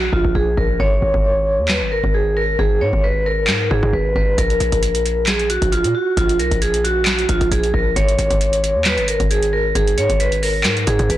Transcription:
Already playing: F#4
0.13 A#1 F4, kick
0.25 A#1, kick
0.35 A#1 G#4
0.57 A#1 A#4, kick
0.80 G#1 C#5, kick
1.02 G#1
1.14 G#1, kick
1.59 D#2
1.69 B4, snare, clap
1.81 G#1
1.92 A#4
2.04 G#1, kick
2.14 G#4
2.37 A#4
2.59 G#1 G#4, kick
2.81 G#2 C#5
2.93 G#1, kick
3.04 B4
3.26 A#4
3.48 G#2, snare, clap
3.71 G#2 G#4, kick
3.83 G#2, kick
3.93 G#1 B4
4.16 G#1 B4, kick
4.38 A#1 A#4, kick, closed hi-hat
4.50 closed hi-hat
4.60 A#1, closed hi-hat
4.72 A#1, kick, closed hi-hat
4.83 closed hi-hat
4.95 closed hi-hat
5.06 closed hi-hat
5.27 G#4, snare, clap, closed hi-hat
5.39 closed hi-hat
5.50 F#4, closed hi-hat
5.62 A#1, kick, closed hi-hat
5.72 F4, closed hi-hat
5.84 A#2, closed hi-hat
5.95 F#4
6.17 A#1 F4, kick, closed hi-hat
6.29 closed hi-hat
6.39 B1 A#4, closed hi-hat
6.51 A#1, kick, closed hi-hat
6.62 G#4, closed hi-hat
6.74 closed hi-hat
6.84 F#4, closed hi-hat
7.06 snare, clap, closed hi-hat
7.19 closed hi-hat
7.29 A#1 F4, kick, closed hi-hat
7.41 A#1, kick, closed hi-hat
7.51 A#1 G#4, closed hi-hat
7.63 closed hi-hat
7.74 A#1 A#4, kick
7.96 G#1 C#5, kick, closed hi-hat
8.08 closed hi-hat
8.19 G#1, closed hi-hat
8.31 G#1, kick, closed hi-hat
8.41 closed hi-hat
8.53 closed hi-hat
8.64 closed hi-hat
8.75 D#2
8.85 B4, snare, clap, closed hi-hat
8.98 G#1, closed hi-hat
9.08 A#4, closed hi-hat
9.20 G#1, kick, closed hi-hat
9.31 G#4, closed hi-hat
9.43 closed hi-hat
9.53 A#4
9.75 G#1 G#4, kick, closed hi-hat
9.88 closed hi-hat
9.98 G#2 C#5, closed hi-hat
10.10 G#1, kick, closed hi-hat
10.20 B4, closed hi-hat
10.32 closed hi-hat
10.43 A#4, open hi-hat
10.64 G#2, snare, clap, closed hi-hat
10.77 closed hi-hat
10.87 G#2 G#4, kick, closed hi-hat
10.99 G#2, kick, closed hi-hat
11.10 G#1 B4, closed hi-hat

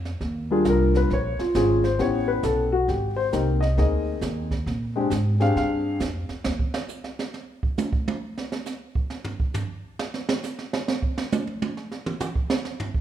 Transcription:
Already playing: F2
0.05 snare
0.21 D#2, brush sweep, snare
0.50 G3 A#3 D4 F4 G#4
0.65 C2, snare, hi-hat pedal
0.70 A#4
0.95 B4, snare
1.10 A#1 C#5, brush sweep, snare
1.39 F4, muted upright bass stroke, snare
1.54 G#1 G#3 C4 C#4 F4 G#4, snare, hi-hat pedal
1.84 C5, snare
1.99 A1 B3 C#4 E4 G4 C#5, brush sweep, snare
2.28 B4
2.43 B1 A4, snare, hi-hat pedal
2.72 F#4
2.88 G#1 G4, brush sweep, snare
3.16 C5
3.32 C2 A#3 C4 D#4 G4, snare, hi-hat pedal
3.61 D#5, snare
3.77 D2 A#3 C4 D#4 G#4 D#5, brush sweep, snare
4.21 D#2, snare, hi-hat pedal
4.51 kick, snare
4.66 A#2, brush sweep, snare
4.96 G#3 C4 D4 G4
5.10 G#2, snare, hi-hat pedal
5.40 C4 D4 G4 G#4 F5, snare
5.55 G2 F5, brush sweep, snare
6.00 F2, snare, hi-hat pedal
6.29 muted upright bass stroke, snare
6.44 D#2, snare
6.59 kick
6.74 snare
6.88 hi-hat pedal
7.04 snare
7.19 snare
7.34 snare
7.63 kick
7.78 hi-hat pedal, high tom
7.93 kick
8.08 high tom
8.38 snare
8.52 snare
8.66 snare, hi-hat pedal
8.95 kick
9.10 snare
9.24 floor tom
9.40 kick
9.54 floor tom, hi-hat pedal
9.99 snare
10.14 snare
10.29 snare
10.43 snare, hi-hat pedal
10.59 snare
10.73 snare
10.88 snare
11.02 kick
11.18 snare
11.32 hi-hat pedal, high tom
11.47 high tom
11.62 high tom
11.77 snare
11.92 snare
12.06 mid tom
12.20 hi-hat pedal, mid tom
12.35 kick
12.50 snare
12.65 snare
12.80 floor tom
12.95 kick

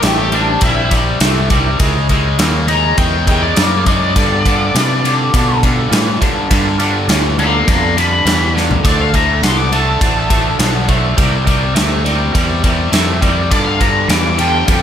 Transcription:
0.01 A1 C3 A3 D4 E4 G4 A#4, snare, ride
0.19 G4
0.32 C3 G3 D4 E4 G4 A#4, ride
0.61 A#1 C3 G3 D4 E4 G4 A#4, kick, ride
0.91 C3 G3 D4 E4 G4 A#4, kick, ride
1.20 C2 C3 A3 D4 E4 G4 A#4, snare, ride
1.50 C3 G3 D4 E4 G4 A#4, kick, ride
1.78 C#2 C#3 G#3 D#4 E4 G4 A#4, kick, ride
2.07 C#3 G#3 D#4 E4 G4 A#4, kick, ride
2.38 D#2 C#3 A#3 D#4 E4 G4 A#4, snare, ride
2.68 C#3 G#3 D#4 E4 G4 A#4 A#5, ride
2.96 E2 C#3 G#3 D#4 E4 G4 A#4 G5, kick, ride
3.26 C#3 G#3 D#4 E4 G4 A#4 G5, kick, ride
3.42 D5
3.54 F#2 C#3 A#3 D#4 E4 G4 A#4, snare, ride
3.85 C#3 G#3 D#4 E4 G4 A#4 D5, kick, ride
4.16 G2 D3 D4 F4 A4 B4, kick, ride
4.45 G2 D3 D4 F4 A4 B4, kick, ride
4.74 G2 C3 E3 D4 F4 A4 B4, snare, ride
5.01 G2 D3 D4 F4 A4 B4, ride
5.31 G2 B2 D3 D4 F4 A4 B4, kick, ride
5.60 G2 D3 D4 F4 A4 B4, kick, ride
5.89 G2 A2 E3 D4 F4 A4 B4, ride
5.93 snare
6.20 G2 D3 D4 F4 A4 B4, kick, ride
6.48 G2 D3 D4 F4 A4 B4, kick, ride
6.78 G2 D3 D4 F4 A4 B4, ride
7.08 D2 G2 E3 D4 F4 A4 B4, snare, ride
7.36 G2 D3 D4 F4 A4 B4 A#5 D6, ride
7.67 F2 G2 D3 D4 F4 A4 B4 A#5 D6, kick, ride
7.95 G2 D3 D4 F4 A4 B4 B5, ride
8.25 E2 G2 E3 D4 F4 A4 B4, snare, ride
8.54 G2 D3 D4 F4 A4 B4, snare
8.71 floor tom
8.84 D2 D3 A3 E4 F#4 A4 C5 D5, kick, ride
9.01 F5
9.14 D3 A3 E4 F#4 A4 C5 A#5, kick, ride
9.42 C2 D3 B3 E4 F#4 C6, snare, ride
9.47 A4 D5
9.57 D6
9.72 D3 A3 E4 F#4 A4 D5 A5, ride
10.01 A1 D3 A3 E4 F#4 A4 C5, kick, ride
10.30 D3 A3 E4 F#4 A4 C5, kick, ride
10.58 B1 D3 B3 E4 F#4 A4 C5, snare, ride
10.88 D3 A3 E4 F#4 A4 C5, kick, ride
11.17 C2 C3 G3 E4 G4 A#4 D5, kick, ride
11.44 C3 G3 E4 G4 A#4 D5, kick, ride
11.73 D2 C3 A3 E4 G4 A#4 D5, snare, ride
12.04 C3 G3 E4 G4 A#4 D5, ride
12.32 E2 C3 G3 E4 G4 A#4 D5, kick, ride
12.62 C3 G3 E4 G4 A#4 D5, kick, ride
12.92 F2 C3 A3 E4 G4 A#4 D5, snare, ride
13.21 C3 G3 E4 G4 A#4 D5, kick, ride
13.51 G2 D3 F4 A4 B4 D5, kick, ride
13.65 F5
13.78 G2 D3 F4 A4 B4 D5 A#5, kick, ride
14.08 E2 G2 E3 F4 A4 B4 D5 D6, snare, ride
14.24 D6
14.38 G2 D3 F4 A4 B4 D5 G5, ride
14.66 F2 G2 D3 F4 A4 B4 D5, kick, ride

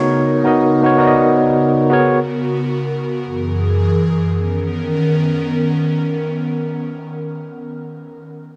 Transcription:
Already playing: C#3 B3 D#4 F#4 A#4 C#5
0.44 B3 D#4 F#4 A#4 D#5
0.82 B3 D#4 F#4 A#4 C#5
0.97 B3 D#4 F#4 A#4 D5
1.07 D#5
1.90 B3 F#4 G#4 A#4 C#5
3.25 F#2 E3 G#4
4.32 D#3 B3 C#4 A#4

